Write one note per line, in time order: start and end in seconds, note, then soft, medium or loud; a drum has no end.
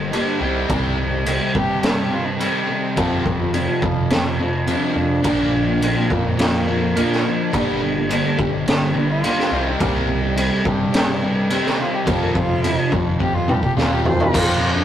0.00 0.19 G1 medium
0.00 0.38 A#3 medium
0.12 0.39 G2 medium
0.12 0.39 D3 medium
0.12 0.41 G3 medium
0.12 0.39 G3 loud
0.12 0.40 A#3 medium
0.12 0.40 D4 medium
0.12 0.43 G4 medium
0.12 crash soft
0.41 0.64 C2 medium
0.41 0.67 C3 medium
0.41 0.68 C3 medium
0.41 0.68 D#3 medium
0.41 0.68 G3 medium
0.41 0.69 G3 medium
0.41 0.68 C4 loud
0.41 0.70 C4 medium
0.41 0.70 G4 loud
0.68 1.38 C2 medium
0.68 1.24 C3 medium
0.68 0.96 C3 medium
0.68 1.25 D#3 medium
0.68 1.13 G3 medium
0.68 0.96 G3 medium
0.68 1.12 C4 medium
0.68 0.97 C4 medium
0.68 1.11 G4 medium
0.68 kick medium
0.68 crash soft
0.98 1.23 C3 medium
0.98 1.23 G3 medium
1.11 1.27 G3 medium
1.11 1.27 C4 medium
1.11 1.28 G4 medium
1.25 1.68 C3 medium
1.25 1.52 C3 medium
1.25 1.52 D#3 medium
1.25 1.52 G3 medium
1.25 1.42 G3 medium
1.25 1.40 C4 medium
1.25 1.39 G4 medium
1.25 crash medium
1.39 1.54 G3 medium
1.39 1.55 C4 medium
1.39 1.56 G4 medium
1.53 2.46 G2 loud
1.53 1.80 C3 medium
1.53 1.68 D#3 medium
1.53 1.68 G3 medium
1.53 1.81 G3 medium
1.53 1.68 C4 medium
1.53 1.86 G4 medium
1.53 1.67 G4 medium
1.53 kick medium
1.69 muted steel-string acoustic guitar stroke medium
1.83 2.08 C3 medium
1.83 2.09 G3 medium
1.83 1.97 A#4 medium
1.83 snare loud
1.83 crash medium
1.97 2.11 G3 medium
1.97 2.12 C4 medium
1.97 2.13 G4 medium
1.97 2.15 G4 medium
2.11 2.37 C3 medium
2.11 2.26 D#3 medium
2.11 2.37 G3 medium
2.11 2.26 G3 medium
2.11 2.26 C4 medium
2.11 2.28 F4 medium
2.11 2.26 G4 medium
2.27 2.40 C4 medium
2.27 muted steel-string acoustic guitar stroke medium
2.40 2.95 C3 medium
2.40 2.66 C3 loud
2.40 2.66 D#3 medium
2.40 2.67 G3 medium
2.40 2.68 G3 loud
2.40 4.07 C4 medium
2.40 2.67 C4 medium
2.40 2.69 C4 medium
2.40 2.69 G4 medium
2.40 crash medium
2.67 2.93 C3 medium
2.67 2.95 D#3 medium
2.67 2.94 G3 medium
2.67 2.95 G3 medium
2.67 2.96 C4 medium
2.67 2.96 G4 medium
2.96 3.23 F2 medium
2.96 3.66 F2 loud
2.96 3.23 C3 medium
2.96 3.52 F3 medium
2.96 3.24 F3 medium
2.96 3.41 G3 medium
2.96 3.40 C4 loud
2.96 3.39 F4 loud
2.96 kick loud
2.96 crash medium
3.24 3.50 F2 medium
3.24 3.50 C3 medium
3.24 kick medium
3.39 3.53 G3 medium
3.39 3.53 C4 medium
3.39 3.55 F4 medium
3.52 3.79 F2 medium
3.52 3.79 C3 medium
3.52 3.81 F3 medium
3.52 3.69 G3 medium
3.52 3.68 C4 medium
3.52 3.67 F4 medium
3.52 crash soft
3.68 3.81 G3 medium
3.68 3.82 C4 medium
3.68 3.84 F4 medium
3.82 4.08 F2 medium
3.82 4.74 F2 medium
3.82 4.08 C3 medium
3.82 4.25 F3 medium
3.82 3.95 G3 medium
3.82 3.95 C4 medium
3.82 3.94 F4 medium
3.82 kick medium
3.96 muted steel-string acoustic guitar stroke medium
4.10 4.37 F2 medium
4.10 4.37 C3 medium
4.10 snare loud
4.10 crash medium
4.24 4.38 G3 medium
4.24 4.39 C4 medium
4.24 4.40 F4 medium
4.38 4.65 F2 medium
4.38 4.65 C3 medium
4.38 4.65 F3 medium
4.38 4.52 G3 medium
4.38 4.52 C4 medium
4.38 4.52 F4 medium
4.53 muted steel-string acoustic guitar stroke medium
4.66 4.94 F2 medium
4.66 4.94 C3 medium
4.66 4.93 F3 medium
4.66 4.94 F3 loud
4.66 4.94 G3 medium
4.66 4.95 C4 medium
4.66 5.87 D4 loud
4.66 4.96 F4 medium
4.66 crash soft
4.94 5.21 F2 medium
4.94 5.19 F2 medium
4.94 5.21 C3 medium
4.94 5.22 F3 medium
4.94 5.23 G3 medium
4.94 5.23 C4 medium
4.94 5.23 F4 medium
5.23 5.93 A#1 medium
5.23 5.50 A#2 medium
5.23 5.79 A#2 medium
5.23 5.80 D3 medium
5.23 5.51 F3 medium
5.23 5.69 A#3 medium
5.23 5.51 A#3 loud
5.23 5.67 D4 loud
5.23 5.65 F4 loud
5.23 kick loud
5.23 crash medium
5.53 5.79 A#2 medium
5.53 5.79 F3 medium
5.66 5.82 A#3 medium
5.66 5.82 D4 medium
5.66 5.82 F4 medium
5.80 6.07 A#2 medium
5.80 6.24 A#2 medium
5.80 6.08 D3 medium
5.80 6.07 F3 medium
5.80 5.96 A#3 medium
5.80 5.95 D4 medium
5.80 5.93 F4 loud
5.80 crash medium
5.85 6.11 C4 medium
5.95 6.09 A#3 medium
5.95 6.10 D4 medium
5.95 6.11 F4 medium
6.09 7.02 F2 loud
6.09 6.36 A#2 medium
6.09 6.24 D3 medium
6.09 6.36 F3 medium
6.09 6.24 A#3 medium
6.09 6.39 A#3 medium
6.09 6.24 D4 medium
6.09 6.23 F4 medium
6.09 kick medium
6.25 muted steel-string acoustic guitar stroke soft
6.38 6.64 A#2 medium
6.38 6.64 F3 medium
6.38 snare loud
6.38 crash medium
6.42 7.51 A#3 loud
6.52 6.67 A#3 medium
6.52 6.67 D4 medium
6.52 6.68 F4 medium
6.67 6.93 A#2 medium
6.67 6.81 D3 medium
6.67 6.93 F3 medium
6.67 6.81 A#3 medium
6.67 6.81 D4 medium
6.67 6.81 F4 medium
6.82 muted steel-string acoustic guitar stroke soft
6.95 7.50 A#2 medium
6.95 7.22 A#2 medium
6.95 7.22 D3 medium
6.95 7.22 F3 medium
6.95 7.23 A#3 loud
6.95 7.24 D4 loud
6.95 7.25 F4 medium
6.95 crash medium
7.12 snare soft
7.23 7.50 A#2 medium
7.23 7.50 D3 medium
7.23 7.50 F3 medium
7.23 7.51 A#3 medium
7.23 7.51 D4 medium
7.23 7.52 F4 medium
7.52 8.22 G1 medium
7.52 7.79 G2 medium
7.52 8.08 G2 medium
7.52 7.79 D3 medium
7.52 8.08 D3 medium
7.52 7.79 G3 medium
7.52 7.97 G3 medium
7.52 7.96 A#3 medium
7.52 7.95 D4 medium
7.52 7.95 G4 loud
7.52 kick loud
7.52 crash medium
7.81 8.07 G2 medium
7.81 8.07 D3 medium
7.95 8.10 G3 medium
7.95 8.10 A#3 medium
7.95 8.10 D4 medium
7.95 8.11 G4 medium
8.09 8.52 G2 medium
8.09 8.35 G2 medium
8.09 8.35 D3 medium
8.09 8.52 D3 medium
8.09 8.26 G3 medium
8.09 8.24 A#3 medium
8.09 8.24 D4 loud
8.09 8.24 G4 loud
8.09 crash medium
8.24 8.37 G3 medium
8.24 8.37 A#3 medium
8.24 8.38 D4 medium
8.24 8.39 G4 medium
8.37 9.30 G1 medium
8.37 8.63 G2 medium
8.37 8.63 D3 medium
8.37 8.53 G3 medium
8.37 8.52 A#3 medium
8.37 8.52 D4 medium
8.37 8.52 G4 medium
8.37 kick medium
8.53 muted steel-string acoustic guitar stroke soft
8.66 8.92 G2 medium
8.66 8.92 D3 medium
8.66 8.80 A#3 medium
8.66 snare loud
8.66 crash medium
8.80 8.93 G3 medium
8.80 8.94 A#3 medium
8.80 9.00 C4 medium
8.80 8.94 D4 medium
8.80 8.96 G4 medium
8.94 9.20 G2 medium
8.94 9.20 D3 medium
8.94 9.09 G3 medium
8.94 9.08 A#3 medium
8.94 9.08 D4 medium
8.94 9.08 G4 medium
8.99 9.10 D4 medium
9.09 9.71 F4 loud
9.09 muted steel-string acoustic guitar stroke soft
9.22 9.49 G2 medium
9.22 9.50 G2 medium
9.22 9.50 D3 medium
9.22 9.51 G3 medium
9.22 9.50 G3 loud
9.22 9.50 A#3 loud
9.22 9.50 D4 medium
9.22 9.52 G4 medium
9.22 crash medium
9.39 snare soft
9.51 9.74 C2 medium
9.51 9.78 C3 loud
9.51 9.78 C3 medium
9.51 9.79 D#3 loud
9.51 9.80 G3 medium
9.51 9.78 G3 medium
9.51 9.78 C4 medium
9.51 9.81 C4 loud
9.51 9.81 G4 loud
9.70 9.83 C4 medium
9.79 10.49 C2 medium
9.79 10.34 C3 medium
9.79 10.06 C3 medium
9.79 10.35 D#3 loud
9.79 10.07 G3 medium
9.79 10.24 G3 medium
9.79 10.11 A#3 medium
9.79 10.07 C4 medium
9.79 10.23 C4 loud
9.79 10.21 G4 medium
9.79 kick loud
9.79 crash medium
10.08 10.34 C3 medium
10.08 10.34 G3 medium
10.08 11.19 G3 loud
10.22 10.37 G3 medium
10.22 10.37 C4 medium
10.22 10.38 G4 medium
10.35 10.79 C3 loud
10.35 10.62 C3 medium
10.35 10.63 D#3 loud
10.35 10.62 G3 medium
10.35 10.52 G3 loud
10.35 10.50 C4 loud
10.35 10.49 G4 loud
10.35 crash medium
10.49 10.64 G3 medium
10.49 10.65 C4 medium
10.49 10.66 G4 medium
10.64 11.57 G2 loud
10.64 10.90 C3 medium
10.64 10.79 D#3 medium
10.64 10.78 G3 medium
10.64 10.91 G3 medium
10.64 10.79 C4 medium
10.64 10.78 G4 medium
10.64 kick medium
10.79 muted steel-string acoustic guitar stroke medium
10.92 11.18 C3 medium
10.92 11.19 G3 medium
10.92 snare loud
10.92 crash medium
11.07 11.21 G3 medium
11.07 11.22 C4 medium
11.07 11.22 G4 medium
11.21 11.47 C3 medium
11.21 11.35 D#3 medium
11.21 11.47 G3 medium
11.21 11.35 G3 medium
11.21 11.35 C4 medium
11.21 11.34 G4 medium
11.35 muted steel-string acoustic guitar stroke medium
11.49 12.05 C3 medium
11.49 11.77 C3 medium
11.49 11.76 D#3 loud
11.49 11.77 G3 loud
11.49 11.77 G3 medium
11.49 11.77 C4 loud
11.49 11.79 C4 medium
11.49 11.81 C4 medium
11.49 11.79 G4 loud
11.49 crash medium
11.66 snare soft
11.78 12.04 C3 medium
11.78 12.05 D#3 medium
11.78 12.05 G3 medium
11.78 12.04 G3 medium
11.78 12.08 C4 medium
11.78 11.96 F4 medium
11.78 12.06 G4 medium
11.94 12.21 G4 medium
12.06 12.33 F2 medium
12.06 12.76 F2 loud
12.06 12.33 C3 medium
12.06 12.61 F3 medium
12.06 12.33 F3 loud
12.06 12.50 G3 medium
12.06 12.49 C4 loud
12.06 12.47 F4 loud
12.06 kick loud
12.06 crash medium
12.22 12.35 A#4 medium
12.34 12.60 F2 medium
12.34 12.60 C3 medium
12.34 12.91 F4 loud
12.34 kick medium
12.48 12.62 G3 medium
12.48 12.63 C4 medium
12.48 12.64 F4 medium
12.62 12.89 F2 medium
12.62 12.89 C3 medium
12.62 12.90 F3 loud
12.62 12.79 G3 medium
12.62 12.77 C4 loud
12.62 12.76 F4 medium
12.62 crash medium
12.77 12.91 G3 medium
12.77 12.92 C4 medium
12.77 12.93 F4 medium
12.91 13.17 F2 medium
12.91 13.61 F2 medium
12.91 13.17 C3 medium
12.91 13.34 F3 medium
12.91 13.06 G3 medium
12.91 13.05 C4 medium
12.91 13.05 F4 medium
12.91 kick medium
13.06 muted steel-string acoustic guitar stroke medium
13.19 13.45 F2 medium
13.19 13.46 C3 medium
13.19 13.36 G4 medium
13.19 kick medium
13.34 13.47 G3 medium
13.34 13.48 C4 medium
13.34 13.48 F4 medium
13.34 13.51 F4 medium
13.47 13.74 F2 medium
13.47 13.74 C3 medium
13.47 13.75 F3 medium
13.47 13.62 G3 medium
13.47 13.62 C4 medium
13.47 13.61 F4 medium
13.47 13.62 G4 loud
13.47 mid tom medium
13.63 13.77 G4 medium
13.63 muted steel-string acoustic guitar stroke medium
13.63 kick medium
13.76 14.02 D#2 medium
13.76 14.03 F2 medium
13.76 14.03 C3 medium
13.76 14.04 F3 medium
13.76 14.04 F3 loud
13.76 14.04 G3 loud
13.76 14.06 C4 medium
13.76 13.95 F4 medium
13.76 14.06 F4 loud
13.76 snare medium
13.93 14.05 G4 medium
14.04 14.30 F2 medium
14.04 14.30 C3 medium
14.04 14.32 F3 medium
14.04 14.32 G3 medium
14.04 14.33 C4 medium
14.04 14.33 F4 medium
14.04 14.33 C5 loud
14.04 floor tom medium
14.20 floor tom medium
14.32 14.84 F2 medium
14.32 14.84 F2 loud
14.32 14.59 C3 medium
14.32 14.48 F3 medium
14.32 14.47 A#3 medium
14.32 14.46 C4 loud
14.32 14.73 F4 loud
14.32 kick loud
14.32 crash loud
14.46 14.61 F3 medium
14.46 14.61 A#3 medium
14.46 14.62 C4 medium
14.61 14.84 C3 medium
14.61 14.84 F3 medium
14.61 14.84 A#3 medium
14.61 14.84 C4 medium
14.76 14.84 D4 loud